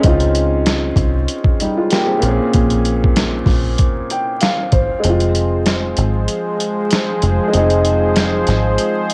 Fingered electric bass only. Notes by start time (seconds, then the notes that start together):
0.04 C#2
0.96 C2
2.23 A#1
2.54 A#1
3.46 A#1
4.73 G#1
5.04 F1
5.98 G#1
7.23 F1
7.54 F1
8.48 G#1